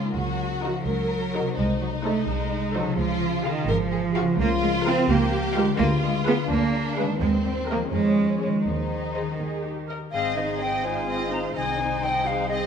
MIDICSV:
0, 0, Header, 1, 9, 480
1, 0, Start_track
1, 0, Key_signature, -5, "major"
1, 0, Tempo, 470588
1, 150, Time_signature, 6, 3, 24, 8
1, 4469, Key_signature, -4, "major"
1, 6869, Tempo, 483871
1, 10229, Tempo, 475813
1, 12795, End_track
2, 0, Start_track
2, 0, Title_t, "Flute"
2, 0, Program_c, 0, 73
2, 10224, Note_on_c, 0, 77, 80
2, 10479, Note_on_c, 0, 75, 59
2, 10495, Note_off_c, 0, 77, 0
2, 10707, Note_off_c, 0, 75, 0
2, 10713, Note_on_c, 0, 79, 60
2, 10961, Note_on_c, 0, 80, 55
2, 10977, Note_off_c, 0, 79, 0
2, 11439, Note_off_c, 0, 80, 0
2, 11444, Note_on_c, 0, 82, 63
2, 11505, Note_off_c, 0, 82, 0
2, 11681, Note_on_c, 0, 80, 72
2, 12154, Note_on_c, 0, 79, 61
2, 12169, Note_off_c, 0, 80, 0
2, 12390, Note_on_c, 0, 77, 67
2, 12405, Note_off_c, 0, 79, 0
2, 12608, Note_off_c, 0, 77, 0
2, 12614, Note_on_c, 0, 75, 47
2, 12675, Note_off_c, 0, 75, 0
2, 12795, End_track
3, 0, Start_track
3, 0, Title_t, "Violin section"
3, 0, Program_c, 1, 48
3, 636, Note_on_c, 1, 70, 61
3, 814, Note_off_c, 1, 70, 0
3, 1369, Note_on_c, 1, 70, 60
3, 1543, Note_off_c, 1, 70, 0
3, 2080, Note_on_c, 1, 72, 62
3, 2255, Note_off_c, 1, 72, 0
3, 2805, Note_on_c, 1, 72, 65
3, 2978, Note_off_c, 1, 72, 0
3, 3505, Note_on_c, 1, 77, 68
3, 3685, Note_off_c, 1, 77, 0
3, 4240, Note_on_c, 1, 77, 69
3, 4413, Note_off_c, 1, 77, 0
3, 4955, Note_on_c, 1, 77, 78
3, 5131, Note_off_c, 1, 77, 0
3, 5669, Note_on_c, 1, 77, 75
3, 5847, Note_off_c, 1, 77, 0
3, 6395, Note_on_c, 1, 77, 76
3, 6571, Note_off_c, 1, 77, 0
3, 7105, Note_on_c, 1, 77, 65
3, 7282, Note_off_c, 1, 77, 0
3, 7834, Note_on_c, 1, 75, 56
3, 8005, Note_off_c, 1, 75, 0
3, 8551, Note_on_c, 1, 73, 46
3, 8726, Note_off_c, 1, 73, 0
3, 9279, Note_on_c, 1, 75, 49
3, 9454, Note_off_c, 1, 75, 0
3, 9999, Note_on_c, 1, 75, 42
3, 10175, Note_off_c, 1, 75, 0
3, 10238, Note_on_c, 1, 75, 45
3, 10460, Note_off_c, 1, 75, 0
3, 10473, Note_on_c, 1, 72, 38
3, 10707, Note_on_c, 1, 75, 43
3, 10715, Note_off_c, 1, 72, 0
3, 10952, Note_off_c, 1, 75, 0
3, 10955, Note_on_c, 1, 72, 41
3, 11196, Note_off_c, 1, 72, 0
3, 11208, Note_on_c, 1, 75, 38
3, 11426, Note_off_c, 1, 75, 0
3, 11439, Note_on_c, 1, 72, 39
3, 11674, Note_on_c, 1, 75, 38
3, 11678, Note_off_c, 1, 72, 0
3, 11898, Note_off_c, 1, 75, 0
3, 11912, Note_on_c, 1, 72, 43
3, 12153, Note_off_c, 1, 72, 0
3, 12164, Note_on_c, 1, 75, 39
3, 12398, Note_off_c, 1, 75, 0
3, 12408, Note_on_c, 1, 72, 41
3, 12640, Note_off_c, 1, 72, 0
3, 12648, Note_on_c, 1, 75, 42
3, 12795, Note_off_c, 1, 75, 0
3, 12795, End_track
4, 0, Start_track
4, 0, Title_t, "Violin section"
4, 0, Program_c, 2, 48
4, 0, Note_on_c, 2, 65, 76
4, 108, Note_off_c, 2, 65, 0
4, 147, Note_on_c, 2, 66, 72
4, 857, Note_off_c, 2, 66, 0
4, 864, Note_on_c, 2, 70, 76
4, 1578, Note_off_c, 2, 70, 0
4, 1593, Note_on_c, 2, 63, 73
4, 3002, Note_off_c, 2, 63, 0
4, 3044, Note_on_c, 2, 65, 78
4, 3741, Note_off_c, 2, 65, 0
4, 3750, Note_on_c, 2, 70, 84
4, 3832, Note_off_c, 2, 70, 0
4, 3996, Note_on_c, 2, 68, 55
4, 4078, Note_off_c, 2, 68, 0
4, 4232, Note_on_c, 2, 66, 74
4, 4314, Note_off_c, 2, 66, 0
4, 4480, Note_on_c, 2, 65, 92
4, 5180, Note_off_c, 2, 65, 0
4, 5192, Note_on_c, 2, 67, 85
4, 5895, Note_off_c, 2, 67, 0
4, 5907, Note_on_c, 2, 65, 82
4, 6615, Note_off_c, 2, 65, 0
4, 6624, Note_on_c, 2, 62, 84
4, 7331, Note_on_c, 2, 60, 84
4, 7341, Note_off_c, 2, 62, 0
4, 8037, Note_off_c, 2, 60, 0
4, 8049, Note_on_c, 2, 61, 61
4, 8762, Note_off_c, 2, 61, 0
4, 8779, Note_on_c, 2, 63, 56
4, 9850, Note_off_c, 2, 63, 0
4, 10234, Note_on_c, 2, 68, 46
4, 10458, Note_off_c, 2, 68, 0
4, 10479, Note_on_c, 2, 72, 40
4, 10707, Note_on_c, 2, 68, 38
4, 10718, Note_off_c, 2, 72, 0
4, 10952, Note_off_c, 2, 68, 0
4, 10954, Note_on_c, 2, 72, 41
4, 11196, Note_off_c, 2, 72, 0
4, 11208, Note_on_c, 2, 68, 35
4, 11423, Note_on_c, 2, 72, 41
4, 11426, Note_off_c, 2, 68, 0
4, 11666, Note_on_c, 2, 68, 41
4, 11670, Note_off_c, 2, 72, 0
4, 11894, Note_off_c, 2, 68, 0
4, 11927, Note_on_c, 2, 72, 42
4, 12153, Note_on_c, 2, 68, 42
4, 12161, Note_off_c, 2, 72, 0
4, 12387, Note_on_c, 2, 72, 43
4, 12393, Note_off_c, 2, 68, 0
4, 12620, Note_on_c, 2, 68, 43
4, 12629, Note_off_c, 2, 72, 0
4, 12795, Note_off_c, 2, 68, 0
4, 12795, End_track
5, 0, Start_track
5, 0, Title_t, "Viola section"
5, 0, Program_c, 3, 48
5, 646, Note_on_c, 3, 63, 67
5, 649, Note_on_c, 3, 66, 61
5, 819, Note_off_c, 3, 63, 0
5, 821, Note_off_c, 3, 66, 0
5, 1368, Note_on_c, 3, 63, 58
5, 1372, Note_on_c, 3, 66, 56
5, 1542, Note_off_c, 3, 63, 0
5, 1544, Note_off_c, 3, 66, 0
5, 2081, Note_on_c, 3, 63, 69
5, 2086, Note_on_c, 3, 69, 67
5, 2256, Note_off_c, 3, 63, 0
5, 2258, Note_off_c, 3, 69, 0
5, 2790, Note_on_c, 3, 63, 65
5, 2790, Note_on_c, 3, 69, 61
5, 2970, Note_off_c, 3, 63, 0
5, 2970, Note_off_c, 3, 69, 0
5, 3515, Note_on_c, 3, 68, 75
5, 3517, Note_on_c, 3, 65, 68
5, 3690, Note_off_c, 3, 68, 0
5, 3692, Note_off_c, 3, 65, 0
5, 4235, Note_on_c, 3, 65, 67
5, 4239, Note_on_c, 3, 68, 68
5, 4411, Note_off_c, 3, 65, 0
5, 4413, Note_off_c, 3, 68, 0
5, 4942, Note_on_c, 3, 70, 78
5, 4943, Note_on_c, 3, 65, 80
5, 5124, Note_off_c, 3, 65, 0
5, 5124, Note_off_c, 3, 70, 0
5, 5657, Note_on_c, 3, 70, 69
5, 5658, Note_on_c, 3, 65, 73
5, 5841, Note_off_c, 3, 65, 0
5, 5841, Note_off_c, 3, 70, 0
5, 6382, Note_on_c, 3, 68, 83
5, 6388, Note_on_c, 3, 71, 78
5, 6564, Note_off_c, 3, 68, 0
5, 6568, Note_off_c, 3, 71, 0
5, 7108, Note_on_c, 3, 68, 61
5, 7108, Note_on_c, 3, 71, 72
5, 7284, Note_off_c, 3, 68, 0
5, 7284, Note_off_c, 3, 71, 0
5, 7819, Note_on_c, 3, 70, 69
5, 7820, Note_off_c, 3, 70, 0
5, 7820, Note_on_c, 3, 70, 68
5, 7997, Note_off_c, 3, 70, 0
5, 8531, Note_on_c, 3, 68, 48
5, 8535, Note_on_c, 3, 73, 45
5, 8715, Note_off_c, 3, 68, 0
5, 8717, Note_off_c, 3, 73, 0
5, 9265, Note_on_c, 3, 72, 49
5, 9268, Note_on_c, 3, 68, 51
5, 9447, Note_off_c, 3, 72, 0
5, 9448, Note_off_c, 3, 68, 0
5, 9512, Note_on_c, 3, 68, 53
5, 9736, Note_off_c, 3, 68, 0
5, 9745, Note_on_c, 3, 67, 44
5, 9990, Note_off_c, 3, 67, 0
5, 9994, Note_on_c, 3, 70, 44
5, 10074, Note_off_c, 3, 70, 0
5, 10240, Note_on_c, 3, 60, 50
5, 10461, Note_off_c, 3, 60, 0
5, 10471, Note_on_c, 3, 63, 41
5, 10707, Note_on_c, 3, 60, 44
5, 10714, Note_off_c, 3, 63, 0
5, 10952, Note_off_c, 3, 60, 0
5, 10956, Note_on_c, 3, 63, 45
5, 11186, Note_on_c, 3, 60, 39
5, 11197, Note_off_c, 3, 63, 0
5, 11414, Note_off_c, 3, 60, 0
5, 11420, Note_on_c, 3, 63, 37
5, 11665, Note_on_c, 3, 60, 45
5, 11668, Note_off_c, 3, 63, 0
5, 11894, Note_off_c, 3, 60, 0
5, 11904, Note_on_c, 3, 63, 41
5, 12148, Note_on_c, 3, 60, 41
5, 12149, Note_off_c, 3, 63, 0
5, 12379, Note_on_c, 3, 63, 42
5, 12390, Note_off_c, 3, 60, 0
5, 12625, Note_off_c, 3, 63, 0
5, 12626, Note_on_c, 3, 60, 37
5, 12795, Note_off_c, 3, 60, 0
5, 12795, End_track
6, 0, Start_track
6, 0, Title_t, "Harp"
6, 0, Program_c, 4, 46
6, 0, Note_on_c, 4, 49, 47
6, 0, Note_on_c, 4, 56, 44
6, 0, Note_on_c, 4, 61, 39
6, 0, Note_on_c, 4, 65, 40
6, 0, Note_on_c, 4, 68, 39
6, 0, Note_on_c, 4, 73, 47
6, 6, Note_on_c, 4, 58, 44
6, 51, Note_on_c, 4, 63, 38
6, 99, Note_on_c, 4, 70, 41
6, 115, Note_off_c, 4, 65, 0
6, 140, Note_off_c, 4, 68, 0
6, 165, Note_off_c, 4, 56, 0
6, 1421, Note_on_c, 4, 48, 46
6, 1466, Note_on_c, 4, 60, 39
6, 1497, Note_off_c, 4, 63, 0
6, 1509, Note_on_c, 4, 63, 42
6, 1524, Note_off_c, 4, 49, 0
6, 1540, Note_off_c, 4, 61, 0
6, 1545, Note_off_c, 4, 58, 0
6, 1558, Note_on_c, 4, 69, 43
6, 1591, Note_off_c, 4, 70, 0
6, 1613, Note_off_c, 4, 73, 0
6, 2848, Note_on_c, 4, 49, 47
6, 2899, Note_on_c, 4, 56, 47
6, 2945, Note_on_c, 4, 65, 48
6, 2964, Note_off_c, 4, 48, 0
6, 2986, Note_off_c, 4, 60, 0
6, 2987, Note_on_c, 4, 68, 44
6, 3008, Note_off_c, 4, 63, 0
6, 3032, Note_off_c, 4, 69, 0
6, 4279, Note_off_c, 4, 49, 0
6, 4291, Note_on_c, 4, 49, 57
6, 4335, Note_on_c, 4, 53, 46
6, 4367, Note_off_c, 4, 65, 0
6, 4379, Note_on_c, 4, 65, 49
6, 4421, Note_off_c, 4, 56, 0
6, 4428, Note_on_c, 4, 70, 50
6, 4465, Note_off_c, 4, 68, 0
6, 5727, Note_on_c, 4, 50, 64
6, 5770, Note_on_c, 4, 56, 50
6, 5804, Note_off_c, 4, 65, 0
6, 5816, Note_on_c, 4, 65, 48
6, 5838, Note_off_c, 4, 49, 0
6, 5861, Note_on_c, 4, 71, 44
6, 5907, Note_off_c, 4, 70, 0
6, 7157, Note_on_c, 4, 51, 60
6, 7202, Note_on_c, 4, 58, 43
6, 7245, Note_on_c, 4, 63, 50
6, 7275, Note_off_c, 4, 50, 0
6, 7288, Note_on_c, 4, 70, 43
6, 7296, Note_off_c, 4, 56, 0
6, 7298, Note_off_c, 4, 53, 0
6, 7318, Note_off_c, 4, 65, 0
6, 7340, Note_off_c, 4, 71, 0
6, 7875, Note_on_c, 4, 53, 51
6, 7916, Note_on_c, 4, 56, 38
6, 7962, Note_on_c, 4, 61, 44
6, 7984, Note_off_c, 4, 51, 0
6, 8004, Note_on_c, 4, 73, 39
6, 8006, Note_off_c, 4, 58, 0
6, 8028, Note_off_c, 4, 63, 0
6, 8049, Note_off_c, 4, 70, 0
6, 8592, Note_on_c, 4, 51, 42
6, 8628, Note_off_c, 4, 56, 0
6, 8639, Note_on_c, 4, 56, 28
6, 8686, Note_on_c, 4, 63, 33
6, 8709, Note_off_c, 4, 53, 0
6, 8731, Note_on_c, 4, 72, 33
6, 8753, Note_off_c, 4, 61, 0
6, 8773, Note_off_c, 4, 73, 0
6, 9324, Note_off_c, 4, 51, 0
6, 9335, Note_on_c, 4, 51, 37
6, 9382, Note_on_c, 4, 55, 29
6, 9412, Note_off_c, 4, 63, 0
6, 9424, Note_on_c, 4, 63, 33
6, 9458, Note_off_c, 4, 56, 0
6, 9467, Note_on_c, 4, 70, 33
6, 9504, Note_off_c, 4, 72, 0
6, 10165, Note_off_c, 4, 51, 0
6, 10188, Note_off_c, 4, 55, 0
6, 10231, Note_off_c, 4, 70, 0
6, 10240, Note_on_c, 4, 44, 45
6, 10472, Note_on_c, 4, 51, 35
6, 10709, Note_off_c, 4, 63, 0
6, 10721, Note_on_c, 4, 63, 34
6, 10957, Note_on_c, 4, 68, 36
6, 11196, Note_on_c, 4, 72, 36
6, 11429, Note_off_c, 4, 63, 0
6, 11441, Note_on_c, 4, 63, 39
6, 11683, Note_on_c, 4, 48, 42
6, 11695, Note_off_c, 4, 51, 0
6, 11699, Note_off_c, 4, 44, 0
6, 11922, Note_on_c, 4, 60, 35
6, 12146, Note_off_c, 4, 63, 0
6, 12158, Note_on_c, 4, 63, 36
6, 12377, Note_off_c, 4, 68, 0
6, 12389, Note_on_c, 4, 68, 36
6, 12618, Note_off_c, 4, 72, 0
6, 12630, Note_on_c, 4, 72, 34
6, 12795, Note_off_c, 4, 48, 0
6, 12795, Note_off_c, 4, 60, 0
6, 12795, Note_off_c, 4, 63, 0
6, 12795, Note_off_c, 4, 68, 0
6, 12795, Note_off_c, 4, 72, 0
6, 12795, End_track
7, 0, Start_track
7, 0, Title_t, "French horn section"
7, 0, Program_c, 5, 60
7, 10462, Note_on_c, 5, 63, 46
7, 10468, Note_on_c, 5, 60, 42
7, 10552, Note_off_c, 5, 63, 0
7, 10556, Note_off_c, 5, 60, 0
7, 10704, Note_on_c, 5, 63, 38
7, 10705, Note_on_c, 5, 60, 37
7, 10793, Note_off_c, 5, 63, 0
7, 10794, Note_off_c, 5, 60, 0
7, 11191, Note_on_c, 5, 63, 42
7, 11198, Note_on_c, 5, 60, 40
7, 11279, Note_off_c, 5, 63, 0
7, 11284, Note_off_c, 5, 60, 0
7, 11432, Note_on_c, 5, 60, 42
7, 11432, Note_on_c, 5, 63, 37
7, 11519, Note_off_c, 5, 63, 0
7, 11520, Note_off_c, 5, 60, 0
7, 11910, Note_on_c, 5, 63, 44
7, 11914, Note_on_c, 5, 60, 46
7, 11998, Note_off_c, 5, 63, 0
7, 12000, Note_off_c, 5, 60, 0
7, 12137, Note_on_c, 5, 60, 39
7, 12138, Note_on_c, 5, 63, 41
7, 12227, Note_off_c, 5, 60, 0
7, 12228, Note_off_c, 5, 63, 0
7, 12610, Note_on_c, 5, 63, 42
7, 12616, Note_on_c, 5, 60, 42
7, 12701, Note_off_c, 5, 63, 0
7, 12705, Note_off_c, 5, 60, 0
7, 12795, End_track
8, 0, Start_track
8, 0, Title_t, "Cello section"
8, 0, Program_c, 6, 48
8, 0, Note_on_c, 6, 56, 68
8, 151, Note_on_c, 6, 54, 73
8, 152, Note_off_c, 6, 56, 0
8, 623, Note_off_c, 6, 54, 0
8, 644, Note_on_c, 6, 53, 72
8, 872, Note_on_c, 6, 54, 83
8, 875, Note_off_c, 6, 53, 0
8, 1597, Note_off_c, 6, 54, 0
8, 1597, Note_on_c, 6, 56, 88
8, 1679, Note_off_c, 6, 56, 0
8, 1836, Note_on_c, 6, 54, 61
8, 1917, Note_off_c, 6, 54, 0
8, 2078, Note_on_c, 6, 57, 79
8, 2310, Note_off_c, 6, 57, 0
8, 2311, Note_on_c, 6, 56, 79
8, 2782, Note_off_c, 6, 56, 0
8, 2805, Note_on_c, 6, 54, 77
8, 3039, Note_off_c, 6, 54, 0
8, 3042, Note_on_c, 6, 53, 76
8, 3515, Note_off_c, 6, 53, 0
8, 3518, Note_on_c, 6, 51, 85
8, 3749, Note_off_c, 6, 51, 0
8, 3757, Note_on_c, 6, 53, 93
8, 4472, Note_off_c, 6, 53, 0
8, 4481, Note_on_c, 6, 58, 99
8, 4563, Note_off_c, 6, 58, 0
8, 4713, Note_on_c, 6, 56, 82
8, 4795, Note_off_c, 6, 56, 0
8, 4955, Note_on_c, 6, 60, 95
8, 5187, Note_off_c, 6, 60, 0
8, 5188, Note_on_c, 6, 58, 86
8, 5665, Note_on_c, 6, 56, 85
8, 5668, Note_off_c, 6, 58, 0
8, 5746, Note_off_c, 6, 56, 0
8, 5896, Note_on_c, 6, 58, 105
8, 5978, Note_off_c, 6, 58, 0
8, 6141, Note_on_c, 6, 56, 90
8, 6223, Note_off_c, 6, 56, 0
8, 6392, Note_on_c, 6, 59, 91
8, 6474, Note_off_c, 6, 59, 0
8, 6623, Note_on_c, 6, 58, 94
8, 7095, Note_off_c, 6, 58, 0
8, 7106, Note_on_c, 6, 56, 76
8, 7185, Note_off_c, 6, 56, 0
8, 7337, Note_on_c, 6, 56, 99
8, 7416, Note_off_c, 6, 56, 0
8, 7585, Note_on_c, 6, 55, 62
8, 7664, Note_off_c, 6, 55, 0
8, 7821, Note_on_c, 6, 58, 78
8, 7900, Note_off_c, 6, 58, 0
8, 8057, Note_on_c, 6, 56, 85
8, 8526, Note_off_c, 6, 56, 0
8, 8538, Note_on_c, 6, 56, 61
8, 8776, Note_off_c, 6, 56, 0
8, 8788, Note_on_c, 6, 51, 60
8, 9997, Note_off_c, 6, 51, 0
8, 10238, Note_on_c, 6, 68, 52
8, 10918, Note_off_c, 6, 68, 0
8, 10955, Note_on_c, 6, 65, 53
8, 11662, Note_off_c, 6, 65, 0
8, 11679, Note_on_c, 6, 63, 44
8, 12391, Note_on_c, 6, 68, 51
8, 12396, Note_off_c, 6, 63, 0
8, 12795, Note_off_c, 6, 68, 0
8, 12795, End_track
9, 0, Start_track
9, 0, Title_t, "Double bass section"
9, 0, Program_c, 7, 48
9, 157, Note_on_c, 7, 37, 68
9, 727, Note_off_c, 7, 37, 0
9, 881, Note_on_c, 7, 37, 63
9, 1452, Note_off_c, 7, 37, 0
9, 1607, Note_on_c, 7, 36, 70
9, 2170, Note_off_c, 7, 36, 0
9, 2313, Note_on_c, 7, 36, 67
9, 2884, Note_off_c, 7, 36, 0
9, 3037, Note_on_c, 7, 37, 75
9, 3603, Note_off_c, 7, 37, 0
9, 3752, Note_on_c, 7, 32, 83
9, 4321, Note_off_c, 7, 32, 0
9, 4471, Note_on_c, 7, 37, 84
9, 5041, Note_off_c, 7, 37, 0
9, 5186, Note_on_c, 7, 37, 88
9, 5758, Note_off_c, 7, 37, 0
9, 5905, Note_on_c, 7, 38, 88
9, 6479, Note_off_c, 7, 38, 0
9, 6637, Note_on_c, 7, 38, 81
9, 7202, Note_off_c, 7, 38, 0
9, 7342, Note_on_c, 7, 39, 74
9, 7910, Note_off_c, 7, 39, 0
9, 8056, Note_on_c, 7, 41, 67
9, 8631, Note_off_c, 7, 41, 0
9, 8784, Note_on_c, 7, 39, 55
9, 9362, Note_off_c, 7, 39, 0
9, 9507, Note_on_c, 7, 39, 47
9, 10085, Note_off_c, 7, 39, 0
9, 10232, Note_on_c, 7, 32, 45
9, 11636, Note_off_c, 7, 32, 0
9, 11673, Note_on_c, 7, 36, 48
9, 12795, Note_off_c, 7, 36, 0
9, 12795, End_track
0, 0, End_of_file